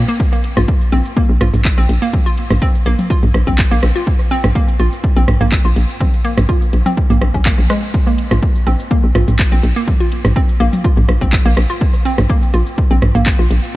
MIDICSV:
0, 0, Header, 1, 4, 480
1, 0, Start_track
1, 0, Tempo, 483871
1, 197, Time_signature, 4, 2, 24, 8
1, 13650, End_track
2, 0, Start_track
2, 0, Title_t, "Synth arpeggio sound"
2, 0, Program_c, 0, 84
2, 83, Note_on_c, 0, 58, 101
2, 125, Note_off_c, 0, 58, 0
2, 323, Note_on_c, 0, 58, 102
2, 386, Note_off_c, 0, 58, 0
2, 564, Note_on_c, 0, 65, 78
2, 626, Note_off_c, 0, 65, 0
2, 916, Note_on_c, 0, 60, 103
2, 987, Note_off_c, 0, 60, 0
2, 1157, Note_on_c, 0, 58, 101
2, 1227, Note_off_c, 0, 58, 0
2, 1397, Note_on_c, 0, 65, 77
2, 1467, Note_off_c, 0, 65, 0
2, 1764, Note_on_c, 0, 60, 96
2, 1827, Note_off_c, 0, 60, 0
2, 2004, Note_on_c, 0, 58, 103
2, 2067, Note_off_c, 0, 58, 0
2, 2244, Note_on_c, 0, 65, 77
2, 2306, Note_off_c, 0, 65, 0
2, 2597, Note_on_c, 0, 60, 104
2, 2667, Note_off_c, 0, 60, 0
2, 2837, Note_on_c, 0, 58, 105
2, 2907, Note_off_c, 0, 58, 0
2, 3076, Note_on_c, 0, 65, 87
2, 3147, Note_off_c, 0, 65, 0
2, 3444, Note_on_c, 0, 60, 104
2, 3506, Note_off_c, 0, 60, 0
2, 3684, Note_on_c, 0, 58, 100
2, 3747, Note_off_c, 0, 58, 0
2, 3924, Note_on_c, 0, 65, 77
2, 3987, Note_off_c, 0, 65, 0
2, 4277, Note_on_c, 0, 60, 109
2, 4347, Note_off_c, 0, 60, 0
2, 4517, Note_on_c, 0, 58, 100
2, 4587, Note_off_c, 0, 58, 0
2, 4757, Note_on_c, 0, 65, 75
2, 4828, Note_off_c, 0, 65, 0
2, 5124, Note_on_c, 0, 60, 109
2, 5187, Note_off_c, 0, 60, 0
2, 5364, Note_on_c, 0, 58, 105
2, 5426, Note_off_c, 0, 58, 0
2, 5604, Note_on_c, 0, 65, 78
2, 5667, Note_off_c, 0, 65, 0
2, 5956, Note_on_c, 0, 60, 102
2, 6027, Note_off_c, 0, 60, 0
2, 6196, Note_on_c, 0, 58, 106
2, 6267, Note_off_c, 0, 58, 0
2, 6436, Note_on_c, 0, 65, 86
2, 6507, Note_off_c, 0, 65, 0
2, 6804, Note_on_c, 0, 60, 101
2, 6867, Note_off_c, 0, 60, 0
2, 7045, Note_on_c, 0, 58, 106
2, 7107, Note_off_c, 0, 58, 0
2, 7285, Note_on_c, 0, 61, 80
2, 7347, Note_off_c, 0, 61, 0
2, 7397, Note_on_c, 0, 58, 85
2, 7444, Note_off_c, 0, 58, 0
2, 7637, Note_on_c, 0, 56, 107
2, 7665, Note_off_c, 0, 56, 0
2, 8005, Note_on_c, 0, 58, 103
2, 8067, Note_off_c, 0, 58, 0
2, 8245, Note_on_c, 0, 65, 79
2, 8307, Note_off_c, 0, 65, 0
2, 8597, Note_on_c, 0, 60, 102
2, 8668, Note_off_c, 0, 60, 0
2, 8837, Note_on_c, 0, 58, 105
2, 8908, Note_off_c, 0, 58, 0
2, 9077, Note_on_c, 0, 65, 77
2, 9148, Note_off_c, 0, 65, 0
2, 9444, Note_on_c, 0, 60, 96
2, 9507, Note_off_c, 0, 60, 0
2, 9685, Note_on_c, 0, 58, 100
2, 9747, Note_off_c, 0, 58, 0
2, 9925, Note_on_c, 0, 65, 78
2, 9987, Note_off_c, 0, 65, 0
2, 10277, Note_on_c, 0, 60, 102
2, 10347, Note_off_c, 0, 60, 0
2, 10516, Note_on_c, 0, 58, 105
2, 10587, Note_off_c, 0, 58, 0
2, 10757, Note_on_c, 0, 65, 84
2, 10827, Note_off_c, 0, 65, 0
2, 11124, Note_on_c, 0, 60, 104
2, 11186, Note_off_c, 0, 60, 0
2, 11364, Note_on_c, 0, 58, 102
2, 11427, Note_off_c, 0, 58, 0
2, 11605, Note_on_c, 0, 65, 78
2, 11667, Note_off_c, 0, 65, 0
2, 11957, Note_on_c, 0, 60, 107
2, 12028, Note_off_c, 0, 60, 0
2, 12197, Note_on_c, 0, 58, 105
2, 12267, Note_off_c, 0, 58, 0
2, 12437, Note_on_c, 0, 65, 77
2, 12508, Note_off_c, 0, 65, 0
2, 12804, Note_on_c, 0, 60, 109
2, 12867, Note_off_c, 0, 60, 0
2, 13045, Note_on_c, 0, 58, 105
2, 13107, Note_off_c, 0, 58, 0
2, 13285, Note_on_c, 0, 65, 75
2, 13347, Note_off_c, 0, 65, 0
2, 13650, End_track
3, 0, Start_track
3, 0, Title_t, "FM bass"
3, 0, Program_c, 1, 39
3, 565, Note_on_c, 1, 34, 105
3, 647, Note_off_c, 1, 34, 0
3, 917, Note_on_c, 1, 34, 92
3, 1011, Note_off_c, 1, 34, 0
3, 1285, Note_on_c, 1, 34, 98
3, 1367, Note_off_c, 1, 34, 0
3, 1396, Note_on_c, 1, 34, 102
3, 1490, Note_off_c, 1, 34, 0
3, 1524, Note_on_c, 1, 34, 88
3, 1696, Note_off_c, 1, 34, 0
3, 1765, Note_on_c, 1, 34, 83
3, 1847, Note_off_c, 1, 34, 0
3, 1877, Note_on_c, 1, 34, 99
3, 1970, Note_off_c, 1, 34, 0
3, 2485, Note_on_c, 1, 34, 104
3, 2567, Note_off_c, 1, 34, 0
3, 2838, Note_on_c, 1, 34, 96
3, 2931, Note_off_c, 1, 34, 0
3, 3205, Note_on_c, 1, 34, 102
3, 3287, Note_off_c, 1, 34, 0
3, 3317, Note_on_c, 1, 34, 100
3, 3410, Note_off_c, 1, 34, 0
3, 3445, Note_on_c, 1, 34, 91
3, 3617, Note_off_c, 1, 34, 0
3, 3686, Note_on_c, 1, 34, 86
3, 3768, Note_off_c, 1, 34, 0
3, 3798, Note_on_c, 1, 34, 98
3, 3891, Note_off_c, 1, 34, 0
3, 4404, Note_on_c, 1, 34, 102
3, 4487, Note_off_c, 1, 34, 0
3, 4758, Note_on_c, 1, 34, 94
3, 4851, Note_off_c, 1, 34, 0
3, 5125, Note_on_c, 1, 34, 101
3, 5207, Note_off_c, 1, 34, 0
3, 5237, Note_on_c, 1, 34, 101
3, 5331, Note_off_c, 1, 34, 0
3, 5365, Note_on_c, 1, 34, 89
3, 5537, Note_off_c, 1, 34, 0
3, 5604, Note_on_c, 1, 34, 85
3, 5687, Note_off_c, 1, 34, 0
3, 5717, Note_on_c, 1, 34, 97
3, 5810, Note_off_c, 1, 34, 0
3, 6325, Note_on_c, 1, 34, 100
3, 6407, Note_off_c, 1, 34, 0
3, 6678, Note_on_c, 1, 34, 95
3, 6771, Note_off_c, 1, 34, 0
3, 7045, Note_on_c, 1, 34, 100
3, 7127, Note_off_c, 1, 34, 0
3, 7157, Note_on_c, 1, 34, 100
3, 7251, Note_off_c, 1, 34, 0
3, 7285, Note_on_c, 1, 34, 89
3, 7457, Note_off_c, 1, 34, 0
3, 7526, Note_on_c, 1, 34, 76
3, 7608, Note_off_c, 1, 34, 0
3, 8245, Note_on_c, 1, 34, 102
3, 8327, Note_off_c, 1, 34, 0
3, 8598, Note_on_c, 1, 34, 96
3, 8691, Note_off_c, 1, 34, 0
3, 8965, Note_on_c, 1, 34, 98
3, 9048, Note_off_c, 1, 34, 0
3, 9078, Note_on_c, 1, 34, 99
3, 9171, Note_off_c, 1, 34, 0
3, 9206, Note_on_c, 1, 34, 88
3, 9377, Note_off_c, 1, 34, 0
3, 9445, Note_on_c, 1, 34, 81
3, 9527, Note_off_c, 1, 34, 0
3, 9557, Note_on_c, 1, 34, 100
3, 9650, Note_off_c, 1, 34, 0
3, 10164, Note_on_c, 1, 34, 103
3, 10247, Note_off_c, 1, 34, 0
3, 10517, Note_on_c, 1, 34, 97
3, 10610, Note_off_c, 1, 34, 0
3, 10884, Note_on_c, 1, 34, 98
3, 10967, Note_off_c, 1, 34, 0
3, 10997, Note_on_c, 1, 34, 99
3, 11090, Note_off_c, 1, 34, 0
3, 11125, Note_on_c, 1, 34, 89
3, 11297, Note_off_c, 1, 34, 0
3, 11364, Note_on_c, 1, 34, 88
3, 11447, Note_off_c, 1, 34, 0
3, 11477, Note_on_c, 1, 34, 99
3, 11570, Note_off_c, 1, 34, 0
3, 12084, Note_on_c, 1, 34, 106
3, 12167, Note_off_c, 1, 34, 0
3, 12437, Note_on_c, 1, 34, 97
3, 12530, Note_off_c, 1, 34, 0
3, 12805, Note_on_c, 1, 34, 101
3, 12887, Note_off_c, 1, 34, 0
3, 12918, Note_on_c, 1, 34, 100
3, 13011, Note_off_c, 1, 34, 0
3, 13045, Note_on_c, 1, 34, 91
3, 13217, Note_off_c, 1, 34, 0
3, 13285, Note_on_c, 1, 34, 88
3, 13367, Note_off_c, 1, 34, 0
3, 13398, Note_on_c, 1, 34, 101
3, 13491, Note_off_c, 1, 34, 0
3, 13650, End_track
4, 0, Start_track
4, 0, Title_t, "Drums"
4, 84, Note_on_c, 9, 82, 52
4, 183, Note_off_c, 9, 82, 0
4, 197, Note_on_c, 9, 36, 119
4, 296, Note_off_c, 9, 36, 0
4, 324, Note_on_c, 9, 82, 43
4, 423, Note_off_c, 9, 82, 0
4, 436, Note_on_c, 9, 42, 93
4, 535, Note_off_c, 9, 42, 0
4, 564, Note_on_c, 9, 37, 60
4, 564, Note_on_c, 9, 45, 75
4, 564, Note_on_c, 9, 82, 52
4, 663, Note_off_c, 9, 82, 0
4, 664, Note_off_c, 9, 37, 0
4, 664, Note_off_c, 9, 45, 0
4, 677, Note_on_c, 9, 36, 118
4, 776, Note_off_c, 9, 36, 0
4, 804, Note_on_c, 9, 82, 43
4, 903, Note_off_c, 9, 82, 0
4, 916, Note_on_c, 9, 42, 97
4, 1016, Note_off_c, 9, 42, 0
4, 1044, Note_on_c, 9, 82, 53
4, 1143, Note_off_c, 9, 82, 0
4, 1157, Note_on_c, 9, 36, 116
4, 1256, Note_off_c, 9, 36, 0
4, 1397, Note_on_c, 9, 37, 64
4, 1397, Note_on_c, 9, 42, 98
4, 1397, Note_on_c, 9, 45, 75
4, 1496, Note_off_c, 9, 37, 0
4, 1496, Note_off_c, 9, 42, 0
4, 1496, Note_off_c, 9, 45, 0
4, 1524, Note_on_c, 9, 82, 52
4, 1525, Note_on_c, 9, 45, 83
4, 1623, Note_off_c, 9, 82, 0
4, 1624, Note_off_c, 9, 45, 0
4, 1637, Note_on_c, 9, 36, 119
4, 1637, Note_on_c, 9, 39, 103
4, 1736, Note_off_c, 9, 36, 0
4, 1736, Note_off_c, 9, 39, 0
4, 1764, Note_on_c, 9, 82, 28
4, 1863, Note_off_c, 9, 82, 0
4, 1877, Note_on_c, 9, 42, 94
4, 1976, Note_off_c, 9, 42, 0
4, 2004, Note_on_c, 9, 82, 51
4, 2103, Note_off_c, 9, 82, 0
4, 2117, Note_on_c, 9, 36, 114
4, 2118, Note_on_c, 9, 48, 52
4, 2217, Note_off_c, 9, 36, 0
4, 2217, Note_off_c, 9, 48, 0
4, 2244, Note_on_c, 9, 82, 42
4, 2343, Note_off_c, 9, 82, 0
4, 2357, Note_on_c, 9, 42, 90
4, 2456, Note_off_c, 9, 42, 0
4, 2484, Note_on_c, 9, 82, 53
4, 2485, Note_on_c, 9, 37, 63
4, 2485, Note_on_c, 9, 45, 75
4, 2583, Note_off_c, 9, 82, 0
4, 2584, Note_off_c, 9, 37, 0
4, 2584, Note_off_c, 9, 45, 0
4, 2597, Note_on_c, 9, 36, 117
4, 2697, Note_off_c, 9, 36, 0
4, 2724, Note_on_c, 9, 82, 43
4, 2823, Note_off_c, 9, 82, 0
4, 2837, Note_on_c, 9, 42, 96
4, 2936, Note_off_c, 9, 42, 0
4, 2964, Note_on_c, 9, 82, 54
4, 2965, Note_on_c, 9, 48, 74
4, 3064, Note_off_c, 9, 48, 0
4, 3064, Note_off_c, 9, 82, 0
4, 3077, Note_on_c, 9, 36, 115
4, 3177, Note_off_c, 9, 36, 0
4, 3205, Note_on_c, 9, 45, 74
4, 3304, Note_off_c, 9, 45, 0
4, 3317, Note_on_c, 9, 37, 65
4, 3317, Note_on_c, 9, 42, 92
4, 3416, Note_off_c, 9, 37, 0
4, 3416, Note_off_c, 9, 42, 0
4, 3444, Note_on_c, 9, 82, 54
4, 3445, Note_on_c, 9, 36, 59
4, 3445, Note_on_c, 9, 48, 57
4, 3543, Note_off_c, 9, 82, 0
4, 3544, Note_off_c, 9, 36, 0
4, 3544, Note_off_c, 9, 48, 0
4, 3557, Note_on_c, 9, 36, 118
4, 3557, Note_on_c, 9, 39, 105
4, 3656, Note_off_c, 9, 39, 0
4, 3657, Note_off_c, 9, 36, 0
4, 3684, Note_on_c, 9, 82, 30
4, 3783, Note_off_c, 9, 82, 0
4, 3797, Note_on_c, 9, 37, 69
4, 3797, Note_on_c, 9, 42, 87
4, 3896, Note_off_c, 9, 37, 0
4, 3896, Note_off_c, 9, 42, 0
4, 3924, Note_on_c, 9, 82, 54
4, 4023, Note_off_c, 9, 82, 0
4, 4037, Note_on_c, 9, 36, 112
4, 4137, Note_off_c, 9, 36, 0
4, 4164, Note_on_c, 9, 82, 45
4, 4263, Note_off_c, 9, 82, 0
4, 4277, Note_on_c, 9, 42, 90
4, 4376, Note_off_c, 9, 42, 0
4, 4404, Note_on_c, 9, 37, 67
4, 4404, Note_on_c, 9, 45, 77
4, 4404, Note_on_c, 9, 82, 55
4, 4503, Note_off_c, 9, 37, 0
4, 4503, Note_off_c, 9, 45, 0
4, 4503, Note_off_c, 9, 82, 0
4, 4517, Note_on_c, 9, 36, 119
4, 4617, Note_off_c, 9, 36, 0
4, 4644, Note_on_c, 9, 82, 44
4, 4743, Note_off_c, 9, 82, 0
4, 4757, Note_on_c, 9, 42, 92
4, 4856, Note_off_c, 9, 42, 0
4, 4884, Note_on_c, 9, 82, 56
4, 4983, Note_off_c, 9, 82, 0
4, 4997, Note_on_c, 9, 36, 115
4, 5096, Note_off_c, 9, 36, 0
4, 5237, Note_on_c, 9, 37, 72
4, 5237, Note_on_c, 9, 42, 89
4, 5237, Note_on_c, 9, 45, 79
4, 5336, Note_off_c, 9, 42, 0
4, 5337, Note_off_c, 9, 37, 0
4, 5337, Note_off_c, 9, 45, 0
4, 5364, Note_on_c, 9, 45, 81
4, 5364, Note_on_c, 9, 82, 57
4, 5464, Note_off_c, 9, 45, 0
4, 5464, Note_off_c, 9, 82, 0
4, 5477, Note_on_c, 9, 36, 116
4, 5477, Note_on_c, 9, 39, 105
4, 5576, Note_off_c, 9, 36, 0
4, 5577, Note_off_c, 9, 39, 0
4, 5605, Note_on_c, 9, 82, 29
4, 5704, Note_off_c, 9, 82, 0
4, 5717, Note_on_c, 9, 42, 88
4, 5816, Note_off_c, 9, 42, 0
4, 5844, Note_on_c, 9, 82, 56
4, 5944, Note_off_c, 9, 82, 0
4, 5957, Note_on_c, 9, 36, 114
4, 5957, Note_on_c, 9, 48, 52
4, 6056, Note_off_c, 9, 36, 0
4, 6056, Note_off_c, 9, 48, 0
4, 6085, Note_on_c, 9, 82, 46
4, 6184, Note_off_c, 9, 82, 0
4, 6197, Note_on_c, 9, 42, 86
4, 6296, Note_off_c, 9, 42, 0
4, 6324, Note_on_c, 9, 37, 66
4, 6324, Note_on_c, 9, 45, 84
4, 6325, Note_on_c, 9, 82, 59
4, 6424, Note_off_c, 9, 37, 0
4, 6424, Note_off_c, 9, 45, 0
4, 6424, Note_off_c, 9, 82, 0
4, 6437, Note_on_c, 9, 36, 117
4, 6537, Note_off_c, 9, 36, 0
4, 6565, Note_on_c, 9, 82, 47
4, 6664, Note_off_c, 9, 82, 0
4, 6677, Note_on_c, 9, 42, 96
4, 6776, Note_off_c, 9, 42, 0
4, 6805, Note_on_c, 9, 48, 78
4, 6805, Note_on_c, 9, 82, 59
4, 6904, Note_off_c, 9, 48, 0
4, 6904, Note_off_c, 9, 82, 0
4, 6918, Note_on_c, 9, 36, 111
4, 7017, Note_off_c, 9, 36, 0
4, 7045, Note_on_c, 9, 45, 80
4, 7045, Note_on_c, 9, 82, 30
4, 7144, Note_off_c, 9, 45, 0
4, 7144, Note_off_c, 9, 82, 0
4, 7157, Note_on_c, 9, 37, 68
4, 7157, Note_on_c, 9, 42, 91
4, 7257, Note_off_c, 9, 37, 0
4, 7257, Note_off_c, 9, 42, 0
4, 7285, Note_on_c, 9, 36, 60
4, 7285, Note_on_c, 9, 48, 60
4, 7285, Note_on_c, 9, 82, 58
4, 7384, Note_off_c, 9, 36, 0
4, 7384, Note_off_c, 9, 48, 0
4, 7384, Note_off_c, 9, 82, 0
4, 7397, Note_on_c, 9, 36, 118
4, 7397, Note_on_c, 9, 39, 109
4, 7497, Note_off_c, 9, 36, 0
4, 7497, Note_off_c, 9, 39, 0
4, 7525, Note_on_c, 9, 48, 50
4, 7525, Note_on_c, 9, 82, 31
4, 7624, Note_off_c, 9, 48, 0
4, 7624, Note_off_c, 9, 82, 0
4, 7638, Note_on_c, 9, 37, 71
4, 7638, Note_on_c, 9, 42, 90
4, 7737, Note_off_c, 9, 42, 0
4, 7738, Note_off_c, 9, 37, 0
4, 7765, Note_on_c, 9, 82, 59
4, 7864, Note_off_c, 9, 82, 0
4, 7877, Note_on_c, 9, 36, 121
4, 7977, Note_off_c, 9, 36, 0
4, 8005, Note_on_c, 9, 82, 45
4, 8104, Note_off_c, 9, 82, 0
4, 8117, Note_on_c, 9, 42, 95
4, 8217, Note_off_c, 9, 42, 0
4, 8245, Note_on_c, 9, 37, 68
4, 8245, Note_on_c, 9, 45, 87
4, 8245, Note_on_c, 9, 82, 57
4, 8344, Note_off_c, 9, 37, 0
4, 8344, Note_off_c, 9, 45, 0
4, 8344, Note_off_c, 9, 82, 0
4, 8358, Note_on_c, 9, 36, 116
4, 8457, Note_off_c, 9, 36, 0
4, 8484, Note_on_c, 9, 82, 45
4, 8584, Note_off_c, 9, 82, 0
4, 8597, Note_on_c, 9, 42, 94
4, 8696, Note_off_c, 9, 42, 0
4, 8725, Note_on_c, 9, 82, 56
4, 8824, Note_off_c, 9, 82, 0
4, 8837, Note_on_c, 9, 36, 122
4, 8937, Note_off_c, 9, 36, 0
4, 9077, Note_on_c, 9, 37, 72
4, 9077, Note_on_c, 9, 42, 97
4, 9077, Note_on_c, 9, 45, 85
4, 9176, Note_off_c, 9, 42, 0
4, 9177, Note_off_c, 9, 37, 0
4, 9177, Note_off_c, 9, 45, 0
4, 9205, Note_on_c, 9, 45, 89
4, 9205, Note_on_c, 9, 82, 55
4, 9304, Note_off_c, 9, 45, 0
4, 9304, Note_off_c, 9, 82, 0
4, 9317, Note_on_c, 9, 36, 123
4, 9318, Note_on_c, 9, 39, 117
4, 9417, Note_off_c, 9, 36, 0
4, 9417, Note_off_c, 9, 39, 0
4, 9445, Note_on_c, 9, 82, 30
4, 9544, Note_off_c, 9, 82, 0
4, 9558, Note_on_c, 9, 42, 93
4, 9657, Note_off_c, 9, 42, 0
4, 9685, Note_on_c, 9, 82, 56
4, 9784, Note_off_c, 9, 82, 0
4, 9797, Note_on_c, 9, 36, 121
4, 9797, Note_on_c, 9, 48, 55
4, 9897, Note_off_c, 9, 36, 0
4, 9897, Note_off_c, 9, 48, 0
4, 9924, Note_on_c, 9, 82, 45
4, 10024, Note_off_c, 9, 82, 0
4, 10037, Note_on_c, 9, 42, 101
4, 10136, Note_off_c, 9, 42, 0
4, 10164, Note_on_c, 9, 82, 54
4, 10165, Note_on_c, 9, 37, 63
4, 10165, Note_on_c, 9, 45, 87
4, 10264, Note_off_c, 9, 37, 0
4, 10264, Note_off_c, 9, 45, 0
4, 10264, Note_off_c, 9, 82, 0
4, 10277, Note_on_c, 9, 36, 127
4, 10376, Note_off_c, 9, 36, 0
4, 10404, Note_on_c, 9, 82, 44
4, 10504, Note_off_c, 9, 82, 0
4, 10517, Note_on_c, 9, 42, 99
4, 10616, Note_off_c, 9, 42, 0
4, 10644, Note_on_c, 9, 82, 56
4, 10645, Note_on_c, 9, 48, 81
4, 10743, Note_off_c, 9, 82, 0
4, 10744, Note_off_c, 9, 48, 0
4, 10757, Note_on_c, 9, 36, 124
4, 10857, Note_off_c, 9, 36, 0
4, 10885, Note_on_c, 9, 45, 85
4, 10984, Note_off_c, 9, 45, 0
4, 10997, Note_on_c, 9, 42, 99
4, 10998, Note_on_c, 9, 37, 69
4, 11096, Note_off_c, 9, 42, 0
4, 11097, Note_off_c, 9, 37, 0
4, 11124, Note_on_c, 9, 82, 55
4, 11125, Note_on_c, 9, 36, 67
4, 11126, Note_on_c, 9, 48, 61
4, 11224, Note_off_c, 9, 36, 0
4, 11224, Note_off_c, 9, 82, 0
4, 11225, Note_off_c, 9, 48, 0
4, 11237, Note_on_c, 9, 39, 116
4, 11238, Note_on_c, 9, 36, 127
4, 11336, Note_off_c, 9, 39, 0
4, 11337, Note_off_c, 9, 36, 0
4, 11365, Note_on_c, 9, 82, 29
4, 11464, Note_off_c, 9, 82, 0
4, 11477, Note_on_c, 9, 42, 95
4, 11478, Note_on_c, 9, 37, 68
4, 11576, Note_off_c, 9, 42, 0
4, 11577, Note_off_c, 9, 37, 0
4, 11605, Note_on_c, 9, 82, 54
4, 11704, Note_off_c, 9, 82, 0
4, 11718, Note_on_c, 9, 36, 127
4, 11817, Note_off_c, 9, 36, 0
4, 11844, Note_on_c, 9, 82, 42
4, 11944, Note_off_c, 9, 82, 0
4, 11957, Note_on_c, 9, 42, 100
4, 12056, Note_off_c, 9, 42, 0
4, 12085, Note_on_c, 9, 37, 62
4, 12085, Note_on_c, 9, 45, 82
4, 12085, Note_on_c, 9, 82, 54
4, 12184, Note_off_c, 9, 37, 0
4, 12184, Note_off_c, 9, 45, 0
4, 12184, Note_off_c, 9, 82, 0
4, 12197, Note_on_c, 9, 36, 126
4, 12297, Note_off_c, 9, 36, 0
4, 12325, Note_on_c, 9, 82, 44
4, 12424, Note_off_c, 9, 82, 0
4, 12437, Note_on_c, 9, 42, 104
4, 12536, Note_off_c, 9, 42, 0
4, 12565, Note_on_c, 9, 82, 55
4, 12664, Note_off_c, 9, 82, 0
4, 12677, Note_on_c, 9, 36, 124
4, 12777, Note_off_c, 9, 36, 0
4, 12917, Note_on_c, 9, 42, 99
4, 12918, Note_on_c, 9, 37, 67
4, 12918, Note_on_c, 9, 45, 83
4, 13016, Note_off_c, 9, 42, 0
4, 13017, Note_off_c, 9, 37, 0
4, 13017, Note_off_c, 9, 45, 0
4, 13045, Note_on_c, 9, 45, 85
4, 13045, Note_on_c, 9, 82, 55
4, 13144, Note_off_c, 9, 45, 0
4, 13144, Note_off_c, 9, 82, 0
4, 13157, Note_on_c, 9, 39, 111
4, 13158, Note_on_c, 9, 36, 127
4, 13256, Note_off_c, 9, 39, 0
4, 13257, Note_off_c, 9, 36, 0
4, 13284, Note_on_c, 9, 82, 28
4, 13383, Note_off_c, 9, 82, 0
4, 13397, Note_on_c, 9, 42, 97
4, 13496, Note_off_c, 9, 42, 0
4, 13525, Note_on_c, 9, 82, 54
4, 13624, Note_off_c, 9, 82, 0
4, 13650, End_track
0, 0, End_of_file